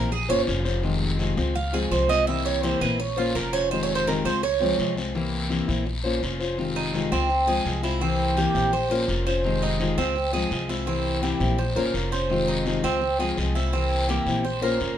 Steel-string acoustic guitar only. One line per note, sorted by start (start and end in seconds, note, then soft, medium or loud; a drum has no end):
0.00 0.10 A#3 soft
0.00 0.11 C4 soft
0.00 0.11 E4 medium
0.11 muted steel-string acoustic guitar stroke medium
0.29 0.45 A#3 medium
0.29 0.46 C#4 medium
0.29 0.47 F4 medium
0.29 0.46 C5 medium
0.47 0.64 A#3 soft
0.47 0.65 C#4 medium
0.47 0.65 F4 medium
0.47 0.63 C5 medium
0.65 0.84 C#4 soft
0.65 0.83 F4 soft
0.65 0.82 C5 soft
0.83 1.18 C3 medium
0.83 1.18 D#3 medium
0.83 1.19 G#3 medium
0.83 1.19 C4 medium
0.83 1.20 F4 medium
1.19 1.37 C3 medium
1.19 1.37 D#3 medium
1.19 1.37 G#3 medium
1.19 1.37 C4 medium
1.19 1.35 F4 medium
1.37 1.54 G#3 soft
1.37 1.54 C4 medium
1.37 1.54 F4 medium
1.55 muted steel-string acoustic guitar stroke medium
1.73 1.89 F3 medium
1.73 1.90 G#3 medium
1.73 1.91 C4 medium
1.73 1.91 F4 medium
1.90 2.08 F3 soft
1.90 2.09 G#3 soft
1.90 2.09 C4 medium
1.90 2.08 F4 medium
2.09 2.28 G#3 soft
2.09 2.27 C4 soft
2.09 2.26 F4 medium
2.27 2.62 C3 medium
2.27 2.62 E3 medium
2.27 2.63 A#3 medium
2.27 2.63 C4 medium
2.27 2.64 E4 medium
2.63 2.80 C3 medium
2.63 2.81 E3 medium
2.63 2.81 A#3 medium
2.63 2.81 C4 medium
2.63 2.80 E4 medium
2.81 2.98 A#3 soft
2.81 2.99 C4 medium
2.81 2.98 E4 medium
2.99 muted steel-string acoustic guitar stroke medium
3.17 3.33 A#3 medium
3.17 3.34 C#4 medium
3.17 3.35 F4 medium
3.17 3.34 C5 medium
3.35 3.52 A#3 soft
3.35 3.53 C#4 soft
3.35 3.53 F4 medium
3.35 3.52 C5 medium
3.53 3.72 C#4 soft
3.53 3.71 F4 soft
3.53 3.70 C5 soft
3.71 4.06 C3 medium
3.71 4.06 D#3 medium
3.71 4.07 G#3 medium
3.71 4.07 C4 medium
3.71 4.08 F4 medium
4.07 4.24 C3 medium
4.07 4.25 D#3 medium
4.07 4.25 G#3 medium
4.07 4.25 C4 medium
4.07 4.24 F4 medium
4.25 4.42 G#3 soft
4.25 4.43 C4 soft
4.25 4.42 F4 medium
4.43 muted steel-string acoustic guitar stroke medium
4.60 4.77 F3 medium
4.60 4.78 G#3 medium
4.60 4.78 C4 medium
4.60 4.78 F4 medium
4.79 4.96 F3 soft
4.79 4.97 G#3 medium
4.79 4.96 C4 medium
4.79 4.95 F4 medium
4.96 5.15 G#3 soft
4.96 5.14 C4 soft
4.96 5.14 F4 soft
5.14 5.48 C3 medium
5.14 5.49 E3 medium
5.14 5.50 A#3 medium
5.14 5.50 C4 medium
5.14 5.51 E4 medium
5.50 5.67 C3 medium
5.50 5.68 E3 medium
5.50 5.68 A#3 medium
5.50 5.68 C4 medium
5.50 5.67 E4 medium
5.68 5.85 A#3 soft
5.68 5.86 C4 soft
5.68 5.85 E4 medium
5.86 muted steel-string acoustic guitar stroke medium
6.04 6.21 A#3 medium
6.04 6.22 C#4 medium
6.04 6.22 F4 medium
6.04 6.21 C5 medium
6.22 6.39 A#3 soft
6.22 6.40 C#4 soft
6.22 6.40 F4 medium
6.22 6.38 C5 medium
6.40 6.58 C#4 soft
6.40 6.58 F4 soft
6.40 6.57 C5 soft
6.57 6.92 C3 medium
6.57 6.92 D#3 medium
6.57 6.93 G#3 medium
6.57 6.94 C4 medium
6.57 6.94 F4 medium
6.93 7.11 C3 medium
6.93 7.11 D#3 medium
6.93 7.11 G#3 medium
6.93 7.11 C4 medium
6.93 7.10 F4 medium
7.11 7.29 G#3 soft
7.11 7.29 C4 soft
7.11 7.29 F4 soft
7.29 muted steel-string acoustic guitar stroke medium
7.47 7.64 F3 medium
7.47 7.65 G#3 medium
7.47 7.65 C4 medium
7.47 7.65 F4 medium
7.65 7.82 F3 medium
7.65 7.83 G#3 medium
7.65 7.83 C4 medium
7.65 7.82 F4 medium
7.83 8.01 G#3 soft
7.83 8.01 C4 soft
7.83 8.00 F4 medium
8.01 8.35 C3 medium
8.01 8.36 E3 medium
8.01 8.37 A#3 medium
8.01 8.37 C4 medium
8.01 8.37 E4 medium
8.37 8.54 C3 medium
8.37 8.54 E3 medium
8.37 8.55 A#3 medium
8.37 8.55 C4 medium
8.37 8.53 E4 medium
8.55 8.72 A#3 soft
8.55 8.73 C4 soft
8.55 8.72 E4 medium
8.73 muted steel-string acoustic guitar stroke medium
8.90 9.07 A#3 medium
8.90 9.08 C#4 medium
8.90 9.08 F4 medium
8.90 9.07 C5 medium
9.08 9.25 A#3 soft
9.08 9.26 C#4 medium
9.08 9.26 F4 medium
9.08 9.25 C5 medium
9.26 9.45 C#4 soft
9.26 9.44 F4 soft
9.26 9.43 C5 medium
9.44 9.78 C3 medium
9.44 9.79 D#3 medium
9.44 9.79 G#3 medium
9.44 9.80 C4 medium
9.44 9.80 F4 medium
9.79 9.97 C3 medium
9.79 9.97 D#3 medium
9.79 9.97 G#3 medium
9.79 9.97 C4 medium
9.79 9.96 F4 medium
9.97 10.15 G#3 soft
9.97 10.15 C4 soft
9.97 10.15 F4 medium
10.15 muted steel-string acoustic guitar stroke medium
10.33 10.49 F3 medium
10.33 10.50 G#3 medium
10.33 10.51 C4 medium
10.33 10.50 F4 medium
10.50 10.68 F3 soft
10.50 10.69 G#3 medium
10.50 10.68 C4 medium
10.50 10.67 F4 medium
10.68 10.87 G#3 soft
10.68 10.86 C4 soft
10.68 10.86 F4 medium
10.86 11.21 C3 medium
10.86 11.21 E3 medium
10.86 11.22 A#3 medium
10.86 11.22 C4 medium
10.86 11.23 E4 medium
11.22 11.40 C3 medium
11.22 11.40 E3 medium
11.22 11.40 A#3 medium
11.22 11.40 C4 medium
11.22 11.39 E4 medium
11.40 11.57 A#3 soft
11.40 11.58 C4 soft
11.40 11.57 E4 medium
11.58 muted steel-string acoustic guitar stroke medium
11.76 11.92 A#3 medium
11.76 11.93 C#4 medium
11.76 11.94 F4 medium
11.76 11.93 C5 medium
11.93 12.11 A#3 soft
11.93 12.11 C#4 soft
11.93 12.11 F4 soft
11.93 12.10 C5 medium
12.11 12.30 C#4 soft
12.11 12.29 F4 soft
12.11 12.29 C5 medium
12.29 12.64 C3 medium
12.29 12.65 D#3 medium
12.29 12.65 G#3 medium
12.29 12.65 C4 medium
12.29 12.66 F4 medium
12.65 12.83 C3 medium
12.65 12.83 D#3 medium
12.65 12.83 G#3 medium
12.65 12.83 C4 medium
12.65 12.82 F4 medium
12.83 13.01 G#3 soft
12.83 13.01 C4 soft
12.83 13.01 F4 medium
13.01 muted steel-string acoustic guitar stroke medium
13.19 13.36 F3 medium
13.19 13.36 G#3 medium
13.19 13.37 C4 medium
13.19 13.36 F4 medium
13.37 13.54 F3 soft
13.37 13.54 G#3 medium
13.37 13.55 C4 medium
13.37 13.53 F4 medium
13.55 13.73 G#3 soft
13.55 13.73 C4 soft
13.55 13.72 F4 soft
13.73 14.07 C3 medium
13.73 14.08 E3 medium
13.73 14.08 A#3 medium
13.73 14.09 C4 medium
13.73 14.09 E4 medium
14.08 14.26 C3 medium
14.08 14.26 E3 medium
14.08 14.26 A#3 medium
14.08 14.27 C4 medium
14.08 14.25 E4 medium
14.26 14.43 A#3 soft
14.26 14.44 C4 soft
14.26 14.43 E4 medium
14.44 muted steel-string acoustic guitar stroke medium
14.62 14.79 A#3 medium
14.62 14.79 C#4 medium
14.62 14.80 F4 medium
14.62 14.79 C5 medium
14.80 14.97 A#3 medium
14.80 14.97 C#4 medium
14.80 14.98 F4 medium
14.80 14.96 C5 medium